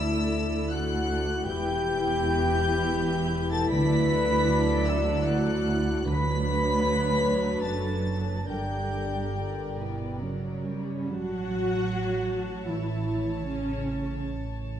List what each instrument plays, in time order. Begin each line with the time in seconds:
Already playing: double bass section D2, cello section D2, viola section A3 E4, french horn section E4, violin section A4 D5 E6, flute section E5
0.71 french horn section F#4, flute section F#5, violin section F#6
1.45 double bass section E1, cello section E2, viola section E3 E4, french horn section G4, violin section G4 B4 G6, flute section G5
3.51 french horn section A4, flute section A5, violin section A6
3.70 double bass section D2, cello section D2, timpani D3, viola section F#3, violin section A4 D5 B6, french horn section B4, flute section B5
4.86 french horn section E4, flute section E5, violin section E6
5.25 french horn section F#4, flute section F#5, violin section F#6
6.05 cello section D2, double bass section D2, timpani D3, viola section F#3 D4, violin section B4 C#5 B6, french horn section B4, flute section B5
7.63 double bass section F#1, cello section F#2, french horn section A4, flute section A5, violin section A6
8.48 double bass section G1, cello section G2, viola section D3 D4, french horn section G4, violin section A#4 D5 G6, flute section G5
9.36 viola section D3
9.78 cello section B2, viola section E3 B3, violin section B4
10.20 cello section C#3, viola section F#3 C#4, violin section C#5
10.64 viola section G3
11.07 double bass section A1, cello section F#3, viola section F#4, violin section C#5 F#5 A5
12.68 cello section E3, viola section E4, violin section E5
13.46 cello section C#3, viola section C#4, violin section C#5